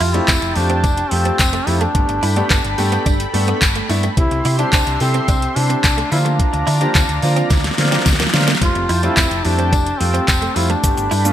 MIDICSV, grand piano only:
0, 0, Header, 1, 2, 480
1, 0, Start_track
1, 0, Tempo, 555556
1, 1684, Time_signature, 4, 2, 24, 8
1, 9787, End_track
2, 0, Start_track
2, 0, Title_t, "Grand piano"
2, 0, Program_c, 0, 0
2, 122, Note_on_c, 0, 57, 74
2, 124, Note_on_c, 0, 60, 70
2, 125, Note_on_c, 0, 65, 72
2, 127, Note_on_c, 0, 67, 83
2, 295, Note_off_c, 0, 57, 0
2, 296, Note_off_c, 0, 60, 0
2, 296, Note_off_c, 0, 65, 0
2, 297, Note_off_c, 0, 67, 0
2, 483, Note_on_c, 0, 57, 75
2, 484, Note_on_c, 0, 60, 68
2, 486, Note_on_c, 0, 65, 66
2, 487, Note_on_c, 0, 67, 81
2, 713, Note_off_c, 0, 57, 0
2, 713, Note_off_c, 0, 60, 0
2, 714, Note_off_c, 0, 65, 0
2, 714, Note_off_c, 0, 67, 0
2, 964, Note_on_c, 0, 57, 73
2, 965, Note_on_c, 0, 60, 70
2, 967, Note_on_c, 0, 65, 69
2, 968, Note_on_c, 0, 67, 85
2, 1193, Note_off_c, 0, 57, 0
2, 1194, Note_off_c, 0, 60, 0
2, 1194, Note_off_c, 0, 65, 0
2, 1195, Note_off_c, 0, 67, 0
2, 1440, Note_on_c, 0, 57, 73
2, 1441, Note_on_c, 0, 60, 66
2, 1444, Note_on_c, 0, 65, 68
2, 1445, Note_on_c, 0, 67, 83
2, 1557, Note_off_c, 0, 57, 0
2, 1557, Note_off_c, 0, 60, 0
2, 1558, Note_off_c, 0, 65, 0
2, 1559, Note_off_c, 0, 67, 0
2, 1681, Note_on_c, 0, 57, 74
2, 1682, Note_on_c, 0, 59, 69
2, 1684, Note_on_c, 0, 62, 68
2, 1684, Note_on_c, 0, 67, 83
2, 1854, Note_off_c, 0, 57, 0
2, 1855, Note_off_c, 0, 59, 0
2, 1856, Note_off_c, 0, 62, 0
2, 1856, Note_off_c, 0, 67, 0
2, 2042, Note_on_c, 0, 57, 78
2, 2043, Note_on_c, 0, 59, 70
2, 2045, Note_on_c, 0, 62, 72
2, 2046, Note_on_c, 0, 67, 86
2, 2215, Note_off_c, 0, 57, 0
2, 2215, Note_off_c, 0, 59, 0
2, 2216, Note_off_c, 0, 62, 0
2, 2217, Note_off_c, 0, 67, 0
2, 2402, Note_on_c, 0, 57, 87
2, 2404, Note_on_c, 0, 59, 80
2, 2406, Note_on_c, 0, 62, 78
2, 2407, Note_on_c, 0, 67, 101
2, 2632, Note_off_c, 0, 57, 0
2, 2633, Note_off_c, 0, 59, 0
2, 2634, Note_off_c, 0, 62, 0
2, 2635, Note_off_c, 0, 67, 0
2, 2880, Note_on_c, 0, 57, 93
2, 2882, Note_on_c, 0, 59, 85
2, 2884, Note_on_c, 0, 62, 79
2, 2885, Note_on_c, 0, 69, 100
2, 3111, Note_off_c, 0, 57, 0
2, 3112, Note_off_c, 0, 59, 0
2, 3113, Note_off_c, 0, 62, 0
2, 3114, Note_off_c, 0, 69, 0
2, 3362, Note_on_c, 0, 57, 88
2, 3363, Note_on_c, 0, 59, 80
2, 3365, Note_on_c, 0, 62, 84
2, 3366, Note_on_c, 0, 64, 99
2, 3477, Note_off_c, 0, 57, 0
2, 3478, Note_off_c, 0, 59, 0
2, 3479, Note_off_c, 0, 62, 0
2, 3479, Note_off_c, 0, 64, 0
2, 3603, Note_on_c, 0, 55, 74
2, 3603, Note_on_c, 0, 60, 71
2, 3605, Note_on_c, 0, 64, 69
2, 3607, Note_on_c, 0, 67, 82
2, 3775, Note_off_c, 0, 55, 0
2, 3775, Note_off_c, 0, 60, 0
2, 3776, Note_off_c, 0, 64, 0
2, 3777, Note_off_c, 0, 67, 0
2, 3964, Note_on_c, 0, 55, 81
2, 3965, Note_on_c, 0, 60, 70
2, 3967, Note_on_c, 0, 64, 71
2, 3968, Note_on_c, 0, 67, 87
2, 4136, Note_off_c, 0, 55, 0
2, 4136, Note_off_c, 0, 60, 0
2, 4137, Note_off_c, 0, 64, 0
2, 4138, Note_off_c, 0, 67, 0
2, 4324, Note_on_c, 0, 55, 77
2, 4325, Note_on_c, 0, 60, 68
2, 4326, Note_on_c, 0, 64, 67
2, 4328, Note_on_c, 0, 69, 85
2, 4553, Note_off_c, 0, 55, 0
2, 4554, Note_off_c, 0, 60, 0
2, 4554, Note_off_c, 0, 64, 0
2, 4555, Note_off_c, 0, 69, 0
2, 4800, Note_on_c, 0, 55, 76
2, 4802, Note_on_c, 0, 60, 70
2, 4803, Note_on_c, 0, 64, 69
2, 4805, Note_on_c, 0, 67, 79
2, 5031, Note_off_c, 0, 55, 0
2, 5032, Note_off_c, 0, 60, 0
2, 5033, Note_off_c, 0, 64, 0
2, 5034, Note_off_c, 0, 67, 0
2, 5283, Note_on_c, 0, 53, 83
2, 5283, Note_on_c, 0, 58, 76
2, 5285, Note_on_c, 0, 62, 74
2, 5286, Note_on_c, 0, 65, 90
2, 5763, Note_off_c, 0, 53, 0
2, 5764, Note_off_c, 0, 58, 0
2, 5765, Note_off_c, 0, 62, 0
2, 5765, Note_off_c, 0, 65, 0
2, 5883, Note_on_c, 0, 53, 79
2, 5884, Note_on_c, 0, 58, 70
2, 5886, Note_on_c, 0, 62, 71
2, 5887, Note_on_c, 0, 67, 88
2, 6055, Note_off_c, 0, 53, 0
2, 6056, Note_off_c, 0, 58, 0
2, 6057, Note_off_c, 0, 62, 0
2, 6057, Note_off_c, 0, 67, 0
2, 6243, Note_on_c, 0, 53, 88
2, 6245, Note_on_c, 0, 58, 81
2, 6246, Note_on_c, 0, 62, 81
2, 6248, Note_on_c, 0, 65, 93
2, 6472, Note_off_c, 0, 53, 0
2, 6473, Note_off_c, 0, 58, 0
2, 6474, Note_off_c, 0, 62, 0
2, 6475, Note_off_c, 0, 65, 0
2, 6721, Note_on_c, 0, 53, 92
2, 6722, Note_on_c, 0, 58, 85
2, 6724, Note_on_c, 0, 62, 81
2, 6726, Note_on_c, 0, 65, 98
2, 6952, Note_off_c, 0, 53, 0
2, 6952, Note_off_c, 0, 58, 0
2, 6953, Note_off_c, 0, 62, 0
2, 6954, Note_off_c, 0, 65, 0
2, 7200, Note_on_c, 0, 53, 86
2, 7202, Note_on_c, 0, 58, 80
2, 7204, Note_on_c, 0, 62, 82
2, 7205, Note_on_c, 0, 65, 96
2, 7317, Note_off_c, 0, 53, 0
2, 7318, Note_off_c, 0, 58, 0
2, 7318, Note_off_c, 0, 62, 0
2, 7319, Note_off_c, 0, 65, 0
2, 7440, Note_on_c, 0, 55, 74
2, 7442, Note_on_c, 0, 57, 67
2, 7443, Note_on_c, 0, 60, 68
2, 7445, Note_on_c, 0, 65, 82
2, 7614, Note_off_c, 0, 55, 0
2, 7615, Note_off_c, 0, 57, 0
2, 7615, Note_off_c, 0, 60, 0
2, 7616, Note_off_c, 0, 65, 0
2, 7799, Note_on_c, 0, 55, 78
2, 7801, Note_on_c, 0, 57, 69
2, 7803, Note_on_c, 0, 60, 69
2, 7804, Note_on_c, 0, 65, 88
2, 7974, Note_off_c, 0, 55, 0
2, 7974, Note_off_c, 0, 57, 0
2, 7975, Note_off_c, 0, 60, 0
2, 7976, Note_off_c, 0, 65, 0
2, 8161, Note_on_c, 0, 55, 78
2, 8163, Note_on_c, 0, 57, 69
2, 8164, Note_on_c, 0, 60, 69
2, 8166, Note_on_c, 0, 64, 80
2, 8392, Note_off_c, 0, 55, 0
2, 8392, Note_off_c, 0, 57, 0
2, 8393, Note_off_c, 0, 60, 0
2, 8394, Note_off_c, 0, 64, 0
2, 8642, Note_on_c, 0, 55, 73
2, 8642, Note_on_c, 0, 57, 69
2, 8645, Note_on_c, 0, 60, 68
2, 8646, Note_on_c, 0, 65, 83
2, 8872, Note_off_c, 0, 55, 0
2, 8872, Note_off_c, 0, 57, 0
2, 8873, Note_off_c, 0, 60, 0
2, 8874, Note_off_c, 0, 65, 0
2, 9122, Note_on_c, 0, 55, 80
2, 9124, Note_on_c, 0, 57, 73
2, 9125, Note_on_c, 0, 60, 68
2, 9126, Note_on_c, 0, 65, 85
2, 9237, Note_off_c, 0, 55, 0
2, 9238, Note_off_c, 0, 57, 0
2, 9239, Note_off_c, 0, 60, 0
2, 9239, Note_off_c, 0, 65, 0
2, 9361, Note_on_c, 0, 57, 75
2, 9362, Note_on_c, 0, 59, 69
2, 9363, Note_on_c, 0, 62, 67
2, 9365, Note_on_c, 0, 67, 81
2, 9534, Note_off_c, 0, 57, 0
2, 9535, Note_off_c, 0, 59, 0
2, 9536, Note_off_c, 0, 62, 0
2, 9536, Note_off_c, 0, 67, 0
2, 9720, Note_on_c, 0, 57, 76
2, 9721, Note_on_c, 0, 59, 72
2, 9723, Note_on_c, 0, 62, 69
2, 9725, Note_on_c, 0, 65, 87
2, 9787, Note_off_c, 0, 57, 0
2, 9787, Note_off_c, 0, 59, 0
2, 9787, Note_off_c, 0, 62, 0
2, 9787, Note_off_c, 0, 65, 0
2, 9787, End_track
0, 0, End_of_file